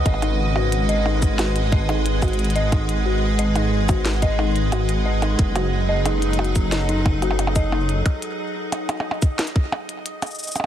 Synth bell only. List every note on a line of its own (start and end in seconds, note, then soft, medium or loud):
0.06 0.21 D#5 loud
0.22 0.38 D#4 medium
0.56 0.62 F#4 medium
0.89 1.04 D#5 loud
1.06 1.21 D#4 medium
1.39 1.45 F#4 medium
1.72 1.88 D#5 loud
1.89 2.04 D#4 medium
2.22 2.28 F#4 medium
2.56 2.71 D#5 loud
2.72 2.88 D#4 medium
3.06 3.12 F#4 medium
3.39 3.54 D#5 loud
3.56 3.71 D#4 medium
3.89 3.95 F#4 medium
4.22 4.38 D#5 loud
4.39 4.54 D#4 medium
4.72 4.78 F#4 medium
5.06 5.21 D#5 loud
5.22 5.38 D#4 medium
5.56 5.62 F#4 medium
5.89 6.04 D#5 loud
6.06 6.21 D#4 medium
6.39 6.45 F#4 medium
6.72 6.88 D#5 loud
6.89 7.04 D#4 medium
7.22 7.28 F#4 medium
7.56 7.71 D#5 loud
7.72 7.88 D#4 medium